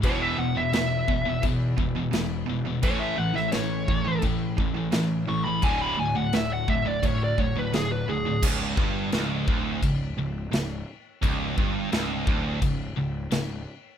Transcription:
<<
  \new Staff \with { instrumentName = "Lead electric guitar" } { \time 4/4 \key d \lydian \tempo 4 = 86 cis''16 e''16 fis''16 e''16 e''4 r2 | cis''16 e''16 fis''16 e''16 cis''4 r4. cis'''16 b''16 | gis''16 b''16 gis''16 fis''16 e''16 fis''16 e''16 d''16 cis''16 d''16 cis''16 b'16 gis'16 b'16 gis'8 | r1 |
r1 | }
  \new Staff \with { instrumentName = "Pipe organ" } { \time 4/4 \key d \lydian e'1~ | e'1 | fis'1 | r1 |
r1 | }
  \new Staff \with { instrumentName = "Pipe organ" } { \clef bass \time 4/4 \key d \lydian << { <b, e b>1 | <cis e cis'>1 | <d fis d'>1 | r1 |
r1 | } \\ { gis,1 | a,1~ | a,1 | r1 |
r1 | } >> }
  \new Staff \with { instrumentName = "Distorted electric guitar" } { \clef bass \time 4/4 \key d \lydian <e, b, e>8 <e, b,>16 <e, b,>16 <e, b,>8 <e, b,>16 <e, b,>16 <e, b,>8 <e, b,>16 <e, b,>16 <e, b,>8 <e, b,>16 <e, b,>16 | <a, e a>8 <a, e>16 <a, e>16 <a, e>8 <a, e>16 <a, e>16 <a, e>8 <a, e>16 <a, e>16 <a, e>8 <a, e>16 <a, e>16 | <d, a, d>8 <d, a,>16 <d, a,>16 <d, a,>8 <d, a,>16 <d, a,>16 <d, a,>8 <d, a,>16 <d, a,>16 <d, a,>8 <d, a,>16 <d, a,>16 | cis,8 g,8 cis,8 d,8 cis,8 cis,8 cis,8 r8 |
cis,8 g,8 cis,8 d,8 cis,8 cis,8 cis,8 r8 | }
  \new Staff \with { instrumentName = "Distorted electric guitar" } { \clef bass \time 4/4 \key d \lydian <e, b, e>8 <e, b,>16 <e, b,>16 <e, b,>8 <e, b,>16 <e, b,>16 <e, b,>8 <e, b,>16 <e, b,>16 <e, b,>8 <e, b,>16 <e, b,>16 | <a, e a>8 <a, e>16 <a, e>16 <a, e>8 <a, e>16 <a, e>16 <a, e>8 <a, e>16 <a, e>16 <a, e>8 <a, e>16 <a, e>16 | <d, a, d>8 <d, a,>16 <d, a,>16 <d, a,>8 <d, a,>16 <d, a,>16 <d, a,>8 <d, a,>16 <d, a,>16 <d, a,>8 <d, a,>16 <d, a,>16 | cis,8 g,8 cis,8 d,8 cis,8 cis,8 cis,8 r8 |
cis,8 g,8 cis,8 d,8 cis,8 cis,8 cis,8 r8 | }
  \new Staff \with { instrumentName = "Picked electric bass" } { \clef bass \time 4/4 \key d \lydian e,,8 e,,8 e,,8 e,,8 e,8 e,,8 e,,8 e,,8 | a,,8 a,,8 a,,8 a,,8 a,8 a,,8 a,,8 a,,8 | d,,8 d,,8 d,,8 d,,8 d,8 d,,8 d,,8 d,,8 | cis,,8 g,,8 cis,,8 d,,8 cis,,8 cis,,8 cis,,8 r8 |
cis,,8 g,,8 cis,,8 d,,8 cis,,8 cis,,8 cis,,8 r8 | }
  \new DrumStaff \with { instrumentName = "Drums" } \drummode { \time 4/4 <cymc bd>4 <cymc sn>8 bd8 <cymc bd>8 bd8 <cymc sn>4 | <cymc bd>8. sn16 <cymc sn>8 bd8 <cymc bd>8 bd8 <cymc sn>4 | <cymc bd>4 <cymc sn>8 bd8 <cymc bd>8 bd8 <cymc sn>4 | <cymc bd>8 bd8 <cymc sn>8 bd8 <cymc bd>4 <cymc sn>4 |
<cymc bd>8 bd8 <cymc sn>8 bd8 <cymc bd>4 <cymc sn>4 | }
>>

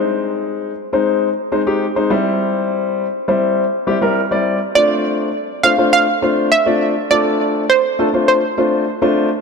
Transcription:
<<
  \new Staff \with { instrumentName = "Synth pluck" } { \time 4/4 \key f \major \tempo 4 = 102 r1 | r1 | d''4. f''8 f''4 e''4 | d''4 c''4 c''4. r8 | }
  \new Staff \with { instrumentName = "Grand piano" } { \time 4/4 \key f \major <aes c' ees' c''>4 r8 <aes c' ees' c''>8 r8 <aes c' ees' c''>16 <aes c' ees' g'>16 r16 <aes c' ees' c''>16 <g c' e' c''>8~ | <g c' e' c''>4 r8 <g c' e' c''>8 r8 <g c' e' g'>16 <g c' e' bes'>16 r16 <g c' e' d''>8 r16 | <a c' d' f' c''>4 r8 <a c' d' f' c''>16 <a c' d' f' c''>8 r16 <a c' d' f' c''>8 r16 <a c' d' f' d''>8 r16 | <a c' d' f' a'>4 r8 <a c' d' f' a'>16 <a c' d' f' c''>8 r16 <a c' d' f' c''>8 r16 <a c' d' f' c''>8 r16 | }
>>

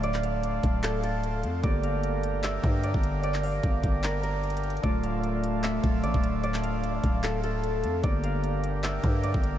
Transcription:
<<
  \new Staff \with { instrumentName = "Harp" } { \time 4/4 \key d \minor \tempo 4 = 150 d''8 f''4. a'8 a'4. | d''8 f''4. e''4 d''4 | d''8 f''4. bes'8 bes'4. | d''8 f''4. e''4 d''4 |
d''8 f''4. a'8 a'4. | d''8 f''4. e''4 d''4 | }
  \new Staff \with { instrumentName = "Accordion" } { \time 4/4 \key d \minor <a f' a'>1 | <bes g' bes'>1~ | <bes g' bes'>1 | <a f' a'>1~ |
<a f' a'>1 | <bes g' bes'>1 | }
  \new Staff \with { instrumentName = "Accordion" } { \clef bass \time 4/4 \key d \minor d1~ | d1~ | d1~ | d1~ |
d1 | d1 | }
  \new Staff \with { instrumentName = "Harp" } { \time 4/4 \key d \minor <d a f' d''>1 | <d bes g' d''>1~ | <d bes g' d''>1 | <d a f' d''>1~ |
<d a f' d''>1 | <d bes g' d''>1 | }
  \new Staff \with { instrumentName = "808-style bass" } { \clef bass \time 4/4 \key d \minor d,,4. d,,2 f,8 | g,,2~ g,,8 g,8. g,,8.~ | g,,4 g,,8 g,,2~ g,,8 | d,,2~ d,,8 d,,8 a,,16 d,,8.~ |
d,,4. d,,2 f,8 | g,,2~ g,,8 g,8. g,,8. | }
  \new DrumStaff \with { instrumentName = "Drums" } \drummode { \time 4/4 hh16 hc16 hh8 hh8 <hh bd>8 <hc hh>8 hh8 hh8 hh8 | <hh bd>8 hh8 hh8 hh8 <hc hh>8 <hh bd>8 hh16 bd16 hh8 | hh16 hc16 hho8 <hh bd>8 <hh bd>8 <hc hh>8 hh8 \tuplet 3/2 { hh16 hh16 hh16 hh16 hh16 hh16 } | <hh bd>8 hh8 hh8 hh8 <hc hh>8 <hh bd>8 hh16 bd16 hh8 |
hh16 hc16 hh8 hh8 <hh bd>8 <hc hh>8 hh8 hh8 hh8 | <hh bd>8 hh8 hh8 hh8 <hc hh>8 <hh bd>8 hh16 bd16 hh8 | }
>>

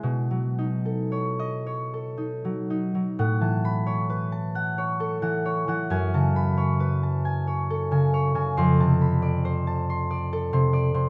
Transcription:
<<
  \new Staff \with { instrumentName = "Harp" } { \time 6/8 \key a \major \tempo 4. = 45 << { r4 r16 dis''4.~ dis''16 | r8 b''8 r2 | r8 b''8 r2 | c'''2. | } \\ { r2. | fis''16 a''8 cis''16 b'16 a''16 fis''16 cis''16 a'16 fis''16 cis''16 fis''16 | gis''16 a''8 cis''16 b'16 a''16 gis''16 cis''16 a'16 gis''16 cis''16 gis''16 | r16 a''16 b''16 d''16 c''16 a''16 c'''16 d''16 a'16 c'''16 d''16 c'''16 | } >> }
  \new Staff \with { instrumentName = "Harp" } { \clef bass \time 6/8 \key a \major <b, b' cis''>16 fis16 dis'16 a'16 cis''8 cis''16 a'16 dis'16 fis16 dis'16 fis16 | a,16 e2 e8 e16 | fis,16 cis2 cis8 cis16 | f,16 c2 c8 c16 | }
>>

